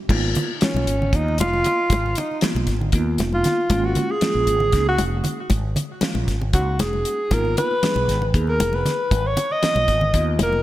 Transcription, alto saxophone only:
0.63 C#4
1.16 D#4
1.40 F4
2.18 D#4
3.34 F4
3.85 F#4
4.11 G#4
4.88 F#4
6.54 F#4
6.81 G#4
7.33 A#4
7.58 B4
8.49 A#4
8.75 B4
9.27 C#5
9.52 D#5
10.43 A#4

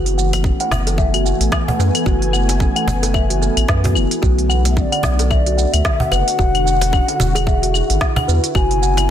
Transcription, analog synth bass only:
Already playing: F#1
0.71 F#1
1.40 A1
1.79 F#2
2.06 F#1
2.87 F#1
3.57 A1
3.69 F#2
3.95 F#1
4.23 B1
5.04 B1
5.74 D2
6.12 F#1
6.39 E1
7.20 E1
7.90 G#1
8.28 E2
8.55 F#1

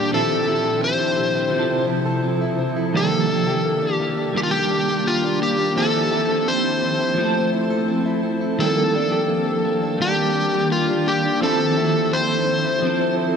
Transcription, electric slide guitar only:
Already playing: G4
0.14 A4
0.84 C5
2.97 A4
3.94 G4
4.37 G4
4.43 F4
4.51 G4
5.07 F4
5.43 G4
5.78 A4
6.48 C5
8.60 A4
10.02 G4
10.72 F4
11.08 G4
11.43 A4
12.13 C5

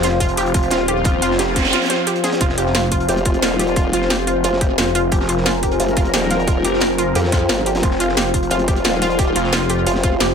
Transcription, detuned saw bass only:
Already playing: F1
0.37 F1
0.71 D#1
1.22 F1
2.41 F1
2.58 F1
3.93 F1
4.78 F1
5.12 F1
5.29 F1
6.64 F1
7.83 F1
8.00 F1
9.36 F1
10.20 F1

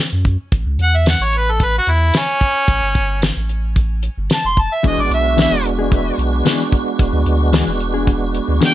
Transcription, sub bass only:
0.13 F#2
0.52 A1
0.66 C#2
0.79 E2
1.20 A1
1.87 E2
2.68 A1
2.83 G1
2.95 G1
3.37 A1
4.17 G1
4.44 F1
4.84 E1
4.98 G#1
5.10 B1
5.51 E1
6.18 B1
6.99 E1
7.13 D2
7.26 D2
7.67 E1
8.48 D2

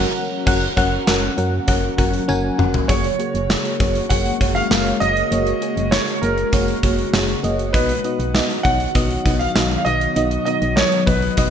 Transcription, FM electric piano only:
Already playing: C#4 F#4 A#4 F#5
0.46 C#4 F#4 A#4 F#5
0.77 C#4 F#4 A#4 F#5
1.07 C#4 F#4 A#4 F#5
1.37 C#4 F#4 A#4 F#5
1.67 C#4 F#4 A#4 F#5
1.98 C#4 F#4 A#4 F#5
2.28 C#4 F#4 A#4 G#5
2.58 C#4 F#4 A#4 F#5
2.89 A#3 F#4 G#4 C#5
3.19 A#3 F#4 G#4 C#5
3.49 A#3 F#4 G#4 C#5
3.80 A#3 F#4 G#4 C#5
4.10 A#3 F#4 G#4 C#5
4.40 A#3 F#4 G#4 C#5
4.71 A#3 F#4 G#4 A#4
5.01 A#3 F#4 G#4 D#5
5.31 A#3 F#4 G#4 C#5
5.61 A#3 F#4 G#4 C#5
5.92 A#3 F#4 G#4 C#5
6.22 A#3 F#4 G#4 C#5
6.52 A#3 F#4 G#4 C#5
6.83 A#3 F#4 G#4 C#5
7.13 A#3 F#4 G#4 C#5
7.43 A#3 F#4 G#4 D#5
7.73 B2 B3 D#4 F#4 D#5
8.04 B3 D#4 F#4 D#5
8.34 B3 D#4 F#4 D#5
8.64 B3 D#4 F#4 C#5
8.95 B3 D#4 F#4 D#5
9.25 B3 D#4 F#4 D#5
9.55 B3 D#4 F#4 D#5
9.86 B3 D#4 F#4 D#5
10.16 B2 B3 D#4 F#4 D#5
10.46 B3 D#4 F#4 D#5
10.77 B3 D#4 F#4 D#5
11.07 B3 D#4 F#4 D#5
11.37 B3 D#4 F#4 D#5

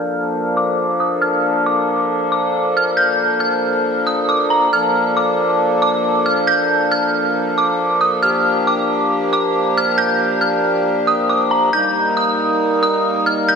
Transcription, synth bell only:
Already playing: F6
0.57 D6
1.00 D#6
1.22 F6
1.66 D6
2.32 D6
2.77 F6
2.97 G6
3.40 F6
4.07 D#6
4.29 D6
4.50 A#5
4.73 F6
5.17 D6
5.82 D6
6.26 F6
6.47 G6
6.92 F6
7.58 D6
8.01 D#6
8.23 F6
8.67 D6
9.33 D6
9.78 F6
9.98 G6
10.41 F6
11.07 D#6
11.29 D6
11.51 A#5
11.73 G6
12.17 D#6
12.83 D#6
13.26 F6
13.49 G6

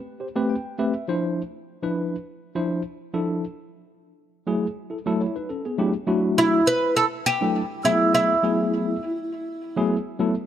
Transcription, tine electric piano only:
0.20 G4 C5
0.35 A3 C4 G4 B4
0.50 G5
0.79 A3 C4 G4 B4 E5
1.08 F3 D4 E4 C5
1.83 F3 D4 E4 B4
2.55 F3 D4 E4 C5
3.13 F3 D4 E4 A4
4.47 F#3 A3 E4 G#4
4.90 E4 A4
5.06 F#3 A3 E4 A4
5.21 E4 C#5
5.36 D#4 B4
5.49 C#4 A4
5.65 B3 G#4
5.78 F#3 A3 D4 E4 G4
6.07 F#3 A3 D4 E4 F#4
7.41 F#3 A3 D4 E4 A4
7.85 F#3 A3 B3 E4 G#4
8.43 F#3 A3 B3 E4 G#4
9.77 F#3 A3 B3 E4 G#4
10.19 F#3 A3 B3 E4 A4

